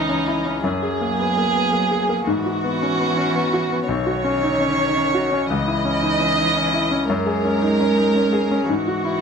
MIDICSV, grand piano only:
0, 0, Header, 1, 2, 480
1, 0, Start_track
1, 0, Tempo, 542986
1, 567, Time_signature, 3, 2, 24, 8
1, 3441, Tempo, 533808
1, 8223, End_track
2, 0, Start_track
2, 0, Title_t, "Grand piano"
2, 0, Program_c, 0, 0
2, 0, Control_c, 0, 64, 127
2, 0, Note_on_c, 0, 37, 45
2, 0, Note_on_c, 0, 61, 40
2, 0, Note_on_c, 0, 63, 33
2, 0, Note_on_c, 0, 64, 34
2, 76, Note_off_c, 0, 61, 0
2, 76, Note_on_c, 0, 61, 39
2, 248, Note_off_c, 0, 64, 0
2, 248, Note_on_c, 0, 64, 39
2, 337, Note_off_c, 0, 61, 0
2, 399, Note_on_c, 0, 61, 40
2, 504, Note_off_c, 0, 64, 0
2, 530, Note_off_c, 0, 37, 0
2, 563, Note_off_c, 0, 61, 0
2, 563, Note_on_c, 0, 42, 50
2, 585, Control_c, 0, 64, 0
2, 588, Note_off_c, 0, 63, 0
2, 703, Control_c, 0, 64, 127
2, 729, Note_on_c, 0, 68, 38
2, 894, Note_on_c, 0, 58, 39
2, 987, Note_off_c, 0, 68, 0
2, 1056, Note_on_c, 0, 59, 36
2, 1149, Note_off_c, 0, 58, 0
2, 1213, Note_off_c, 0, 59, 0
2, 1216, Note_on_c, 0, 58, 37
2, 1375, Note_on_c, 0, 59, 34
2, 1468, Note_off_c, 0, 58, 0
2, 1528, Note_on_c, 0, 58, 39
2, 1532, Note_off_c, 0, 59, 0
2, 1685, Note_on_c, 0, 68, 44
2, 1783, Note_off_c, 0, 58, 0
2, 1849, Note_on_c, 0, 58, 40
2, 1942, Note_off_c, 0, 68, 0
2, 1970, Note_off_c, 0, 42, 0
2, 2008, Note_off_c, 0, 58, 0
2, 2009, Note_on_c, 0, 44, 52
2, 2024, Control_c, 0, 64, 0
2, 2156, Control_c, 0, 64, 127
2, 2173, Note_on_c, 0, 66, 35
2, 2332, Note_on_c, 0, 59, 40
2, 2425, Note_off_c, 0, 66, 0
2, 2494, Note_on_c, 0, 61, 37
2, 2585, Note_off_c, 0, 59, 0
2, 2643, Note_on_c, 0, 59, 39
2, 2650, Note_off_c, 0, 61, 0
2, 2802, Note_on_c, 0, 61, 37
2, 2900, Note_off_c, 0, 59, 0
2, 2962, Note_on_c, 0, 59, 43
2, 2964, Note_off_c, 0, 61, 0
2, 3124, Note_on_c, 0, 66, 46
2, 3218, Note_off_c, 0, 59, 0
2, 3278, Note_on_c, 0, 59, 44
2, 3378, Note_off_c, 0, 66, 0
2, 3407, Note_off_c, 0, 44, 0
2, 3434, Note_on_c, 0, 35, 58
2, 3438, Note_off_c, 0, 59, 0
2, 3459, Control_c, 0, 64, 0
2, 3589, Control_c, 0, 64, 127
2, 3597, Note_on_c, 0, 66, 40
2, 3756, Note_on_c, 0, 61, 42
2, 3855, Note_off_c, 0, 66, 0
2, 3923, Note_on_c, 0, 63, 40
2, 4016, Note_off_c, 0, 61, 0
2, 4083, Note_on_c, 0, 61, 47
2, 4084, Note_off_c, 0, 63, 0
2, 4251, Note_on_c, 0, 63, 39
2, 4343, Note_off_c, 0, 61, 0
2, 4407, Note_on_c, 0, 61, 42
2, 4410, Note_off_c, 0, 63, 0
2, 4567, Note_on_c, 0, 66, 51
2, 4663, Note_off_c, 0, 61, 0
2, 4726, Note_on_c, 0, 61, 45
2, 4823, Note_off_c, 0, 66, 0
2, 4847, Note_off_c, 0, 35, 0
2, 4886, Note_off_c, 0, 61, 0
2, 4889, Note_on_c, 0, 37, 56
2, 4905, Control_c, 0, 64, 0
2, 5034, Control_c, 0, 64, 127
2, 5046, Note_on_c, 0, 64, 47
2, 5199, Note_on_c, 0, 61, 46
2, 5298, Note_off_c, 0, 64, 0
2, 5361, Note_on_c, 0, 63, 41
2, 5454, Note_off_c, 0, 61, 0
2, 5515, Note_on_c, 0, 61, 46
2, 5519, Note_off_c, 0, 63, 0
2, 5674, Note_on_c, 0, 63, 40
2, 5771, Note_off_c, 0, 61, 0
2, 5835, Note_off_c, 0, 63, 0
2, 5840, Note_on_c, 0, 61, 46
2, 5997, Note_on_c, 0, 64, 50
2, 6094, Note_off_c, 0, 61, 0
2, 6157, Note_on_c, 0, 61, 46
2, 6252, Note_off_c, 0, 64, 0
2, 6281, Note_off_c, 0, 37, 0
2, 6317, Note_off_c, 0, 61, 0
2, 6319, Note_on_c, 0, 42, 62
2, 6332, Control_c, 0, 64, 0
2, 6469, Control_c, 0, 64, 127
2, 6472, Note_on_c, 0, 68, 42
2, 6637, Note_on_c, 0, 61, 43
2, 6730, Note_off_c, 0, 68, 0
2, 6795, Note_on_c, 0, 63, 41
2, 6892, Note_off_c, 0, 61, 0
2, 6955, Note_off_c, 0, 63, 0
2, 6958, Note_on_c, 0, 61, 46
2, 7115, Note_on_c, 0, 63, 37
2, 7211, Note_off_c, 0, 61, 0
2, 7274, Note_off_c, 0, 63, 0
2, 7276, Note_on_c, 0, 61, 43
2, 7430, Note_on_c, 0, 68, 49
2, 7532, Note_off_c, 0, 61, 0
2, 7597, Note_on_c, 0, 61, 47
2, 7691, Note_off_c, 0, 68, 0
2, 7723, Note_off_c, 0, 42, 0
2, 7757, Note_on_c, 0, 44, 55
2, 7758, Note_off_c, 0, 61, 0
2, 7773, Control_c, 0, 64, 0
2, 7911, Control_c, 0, 64, 127
2, 7923, Note_on_c, 0, 66, 42
2, 8077, Note_on_c, 0, 64, 42
2, 8180, Note_off_c, 0, 66, 0
2, 8223, Note_off_c, 0, 44, 0
2, 8223, Note_off_c, 0, 64, 0
2, 8223, End_track
0, 0, End_of_file